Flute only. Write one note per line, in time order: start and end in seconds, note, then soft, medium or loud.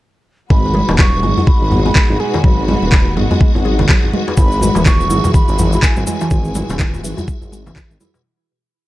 0.50 0.95 B5 loud
0.99 1.41 C#6 loud
1.41 1.49 C#6 medium
1.47 1.85 B5 loud
1.86 2.22 B5 loud
2.20 2.46 G#5 medium
2.44 2.68 B5 loud
2.68 3.13 B5 loud
4.37 4.82 B5 loud
4.86 5.31 C#6 loud
5.34 5.70 B5 loud
5.73 5.85 B5 loud
5.83 6.06 G#5 medium
6.07 6.75 G#5 medium